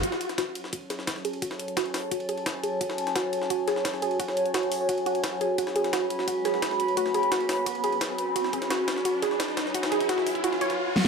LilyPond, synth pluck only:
\new Staff \with { instrumentName = "Synth pluck" } { \time 4/4 \key fis \minor \tempo 4 = 173 fis'8 r8 fis'8 r8 fis'8 gis'8 r8 gis'8 | fis'8 r8 fis'8 r8 fis'8 gis'8 r8 gis'8 | fis'8 r8 fis'8 r8 fis'8 gis'8 r8 gis'8 | fis'8 r8 fis'8 r8 fis'8 fis'8 r8 gis'8 |
fis'8 gis'8 fis'8 r8 fis'8 gis'8 r4 | fis'8 gis'8 fis'8 r8 fis'8 gis'8 r4 | fis'8 gis'8 fis'8 r8 fis'8 gis'8 r4 | fis'8 gis'8 fis'8 r8 fis'8 cis''8 r4 | }